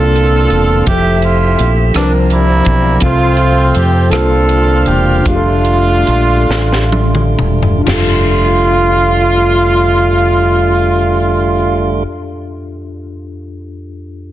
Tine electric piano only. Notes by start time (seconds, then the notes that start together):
Already playing: C3 A#3 C4 D4 F4
0.88 F3 G4 A4 E5
1.94 F3 C4 D4 A#4 B4
2.04 C5
3.01 C3 C4 F4 A4
3.05 C5
4.10 C3 A#3 D4 F4 C5
5.22 D4 F4
5.27 G4 G#4
5.36 A4
7.79 D4
7.84 F2 F4
7.89 G4
7.94 A4